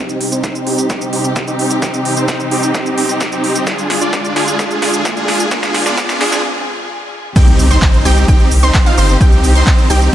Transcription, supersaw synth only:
0.00 0.29 C4 medium
0.00 0.29 D#4 medium
0.00 0.29 G4 medium
0.32 0.64 C4 medium
0.32 0.64 D#4 medium
0.32 0.64 C5 medium
0.67 0.87 C4 loud
0.67 0.87 D#4 medium
0.67 0.87 G4 loud
0.90 1.10 C4 medium
0.90 1.10 D#4 medium
0.90 1.10 G4 loud
1.13 1.40 C4 medium
1.13 1.40 D#4 medium
1.13 1.40 G4 medium
1.48 1.79 C4 medium
1.48 1.79 D#4 medium
1.48 1.79 G4 medium
1.82 2.14 C4 medium
1.82 2.14 D#4 medium
1.82 2.14 G4 medium
2.17 2.49 C4 medium
2.17 2.49 D#4 medium
2.17 2.49 C5 loud
2.51 2.72 C4 medium
2.51 2.72 D#4 medium
2.51 2.72 G4 loud
2.75 2.95 C4 medium
2.75 2.95 G4 loud
2.98 3.25 C4 medium
2.98 3.25 D#4 medium
2.98 3.25 G4 medium
3.32 3.64 C4 medium
3.32 3.64 D#4 medium
3.32 3.64 G4 medium
3.67 3.99 D4 medium
3.67 3.99 F4 medium
3.67 3.99 G#4 medium
4.01 4.33 D4 medium
4.01 4.33 F4 medium
4.01 4.33 D5 loud
4.36 4.56 D4 loud
4.36 4.56 F4 medium
4.36 4.56 G#4 loud
4.59 4.79 D4 medium
4.59 4.79 F4 medium
4.59 4.79 G#4 loud
4.82 5.09 D4 medium
4.82 5.09 F4 medium
4.82 5.09 G#4 medium
5.17 5.49 D4 medium
5.17 5.49 F4 medium
5.17 5.49 G#4 medium
5.51 5.83 D4 medium
5.51 5.83 F4 medium
5.51 5.83 G#4 medium
5.86 6.18 D4 medium
5.86 6.18 F4 medium
5.86 6.18 D5 loud
6.21 6.41 D4 loud
6.21 6.41 F4 loud
6.21 6.41 G#4 loud
7.36 7.68 C4 medium
7.36 7.68 D#4 medium
7.36 7.68 G4 medium
7.70 8.02 C4 medium
7.70 8.02 D#4 medium
7.70 8.02 C5 loud
8.05 8.25 C4 loud
8.05 8.26 D#4 medium
8.05 8.26 G4 loud
8.28 8.49 C4 medium
8.28 8.49 D#4 medium
8.28 8.49 G4 loud
8.63 8.83 C4 loud
8.63 8.83 D#4 medium
8.63 8.83 C5 loud
8.86 8.95 C4 loud
8.86 8.95 D#4 loud
8.86 8.95 F4 loud
8.98 9.15 C4 medium
8.98 9.15 D#4 medium
8.98 9.15 C5 loud
9.21 9.53 C4 medium
9.21 9.53 D#4 medium
9.21 9.53 G4 medium
9.56 9.87 C4 medium
9.56 9.87 D#4 medium
9.56 9.87 C5 loud
9.90 10.10 C4 loud
9.90 10.10 D#4 medium
9.90 10.10 G4 loud

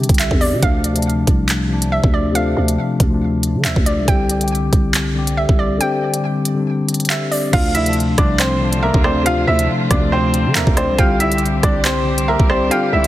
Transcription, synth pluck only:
0.19 0.40 E5 medium
0.41 0.61 D5 medium
0.63 1.03 F5 medium
1.92 2.13 E5 medium
2.14 2.34 D5 medium
2.35 2.76 F5 medium
3.65 3.85 E5 medium
3.86 4.07 D5 medium
4.08 4.48 G5 loud
5.37 5.58 E5 medium
5.59 5.79 D5 medium
5.81 6.21 G5 loud
7.10 7.31 E5 medium
7.31 7.52 D5 medium
7.53 7.94 F5 medium
8.83 9.03 E5 medium
9.04 9.25 D5 medium
9.26 9.67 F5 medium
10.55 10.76 E5 medium
10.77 10.97 D5 medium
10.98 11.39 G5 loud
12.28 12.49 E5 medium
12.50 12.70 D5 medium
12.71 13.07 G5 medium

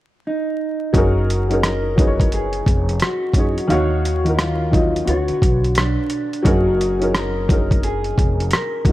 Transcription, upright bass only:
0.94 2.62 F#1 loud
2.67 2.98 F1 medium
3.34 3.54 F#1 medium
3.70 5.04 D#2 medium
5.07 5.28 D2 medium
5.29 muted upright bass stroke soft
5.42 5.94 B1 medium
6.45 8.14 F#1 loud
8.18 8.50 F1 medium
8.85 8.92 F#1 medium

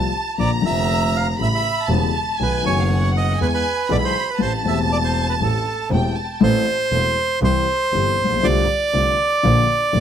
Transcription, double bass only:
0.38 0.60 A#1 medium
0.64 1.36 F1 medium
1.40 1.61 A1 medium
1.89 2.10 E1 medium
2.40 2.61 B1 medium
2.65 3.37 F#1 medium
3.40 3.61 E2 medium
3.90 4.11 B1 medium
4.40 4.61 A1 medium
4.65 5.37 E1 medium
5.40 5.62 A1 medium
5.91 6.12 E1 medium
6.41 6.63 A1 medium
6.92 7.13 E1 medium
7.42 7.63 C2 loud
7.92 8.14 G1 medium
8.18 8.42 A#1 medium
8.43 8.64 C2 loud
8.94 9.14 C2 medium
9.44 9.65 A#1 medium
9.94 10.00 F1 medium

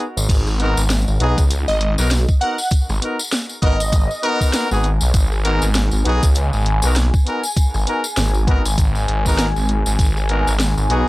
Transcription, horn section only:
0.59 0.82 B3 medium
0.59 0.82 D#4 medium
0.59 0.82 F#4 medium
0.59 0.82 A#4 medium
1.20 1.42 B3 medium
1.20 1.42 D#4 medium
1.20 1.42 F#4 medium
1.20 1.42 G#4 loud
1.99 2.09 B3 medium
1.99 2.09 D#4 medium
1.99 2.09 F#4 medium
1.99 2.09 A#4 loud
2.41 2.56 B3 medium
2.41 2.56 D#4 medium
2.41 2.56 F#4 medium
2.41 2.56 A#4 medium
3.02 3.17 B3 medium
3.02 3.17 D#4 medium
3.02 3.17 F#4 medium
3.02 3.17 A#4 medium
3.62 3.78 B3 loud
3.62 3.78 D#4 loud
3.62 3.78 F#4 loud
3.62 3.78 A#4 loud
4.23 4.67 B3 loud
4.23 4.67 D#4 medium
4.23 4.67 F#4 medium
4.23 4.67 A#4 loud
4.71 4.90 B3 medium
4.71 4.90 D#4 medium
4.71 4.90 F#4 medium
4.71 4.90 G#4 medium
5.45 5.67 B3 medium
5.45 5.67 D#4 medium
5.45 5.67 F#4 medium
5.45 5.67 A#4 loud
6.05 6.27 B3 loud
6.05 6.27 D#4 medium
6.05 6.27 F#4 medium
6.05 6.27 G#4 loud
6.84 6.94 B3 medium
6.84 6.94 D#4 medium
6.84 6.94 F#4 medium
6.84 6.94 A#4 loud
7.26 7.41 B3 medium
7.26 7.41 D#4 medium
7.26 7.41 F#4 medium
7.26 7.41 A#4 medium
7.87 8.02 B3 medium
7.87 8.02 D#4 medium
7.87 8.02 F#4 medium
7.87 8.02 A#4 medium
8.48 8.63 B3 loud
8.48 8.63 D#4 medium
8.48 8.63 F#4 medium
8.48 8.63 A#4 loud
9.26 9.45 B3 loud
9.26 9.45 D#4 medium
9.26 9.45 F#4 medium
9.26 9.45 A#4 loud
10.29 10.51 B3 medium
10.29 10.51 D#4 medium
10.29 10.51 F#4 medium
10.29 10.51 A#4 medium
10.90 11.08 B3 loud
10.90 11.08 D#4 medium
10.90 11.08 F#4 medium
10.90 11.08 G#4 loud

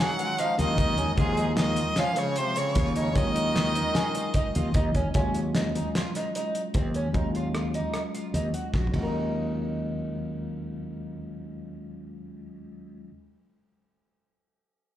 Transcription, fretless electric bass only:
0.59 0.74 D#2 medium
0.78 0.94 D#2 medium
0.99 1.06 D#2 medium
1.18 1.80 D#2 medium
2.76 3.07 D#2 medium
3.16 3.78 D#2 medium
4.56 4.71 D#2 medium
4.75 4.90 D#2 medium
4.95 5.03 D#2 medium
5.15 5.78 D#2 medium
6.75 7.06 D#2 medium
7.15 7.78 D#2 medium
8.34 8.50 D#2 medium
8.74 8.90 A#1 medium
8.94 13.09 D#2 medium

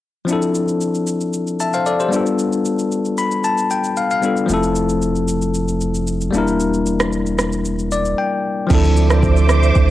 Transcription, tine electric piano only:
0.25 2.07 F3 medium
0.25 2.08 C4 medium
0.25 2.09 D4 medium
0.31 2.10 E4 medium
0.31 1.59 A4 medium
1.60 1.73 E5 medium
1.60 1.73 A5 medium
1.74 1.86 C5 medium
1.74 1.86 F5 medium
1.86 2.00 A4 medium
1.86 1.99 D5 medium
2.00 2.25 G4 medium
2.00 2.25 C5 medium
2.09 4.17 G3 medium
2.09 4.18 B3 medium
2.09 4.19 D4 medium
2.14 4.20 F4 medium
2.14 4.21 A4 medium
3.18 3.42 B5 medium
3.44 3.69 A5 medium
3.71 3.95 G5 medium
3.97 4.10 F5 medium
4.11 4.47 F5 medium
4.22 4.49 G3 medium
4.22 4.49 B3 medium
4.22 4.50 D4 medium
4.22 4.50 F4 medium
4.22 4.50 A4 medium
4.46 6.28 F3 medium
4.46 6.29 A3 medium
4.46 6.30 C4 medium
4.52 6.31 E4 medium
4.52 6.32 A4 medium
6.30 8.38 G3 medium
6.30 8.39 A#3 medium
6.30 8.40 D4 medium
6.36 8.41 E4 medium
6.36 8.42 A#4 medium
7.92 8.16 D5 medium
8.18 8.67 G5 medium
8.67 9.90 F3 medium
8.67 9.90 C4 medium
8.67 9.90 D4 medium
8.73 9.90 E4 medium
8.73 9.90 A4 medium

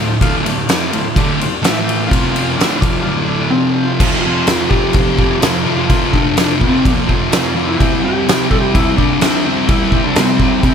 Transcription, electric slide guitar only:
3.50 3.88 C4 medium
3.86 4.21 F4 loud
4.22 4.71 F4 loud
4.70 5.41 G4 loud
5.41 5.76 F4 loud
5.78 6.14 F4 loud
6.12 6.59 D4 medium
6.60 7.04 C4 medium
7.32 7.67 F4 loud
7.67 8.04 E4 loud
8.04 8.50 G4 loud
8.51 8.60 A4 loud
8.60 8.73 G4 loud
8.75 8.97 E4 loud
8.97 9.46 D4 loud
9.45 9.69 C4 medium
9.68 10.01 E4 loud
10.04 10.16 D4 medium
10.16 10.74 C4 loud

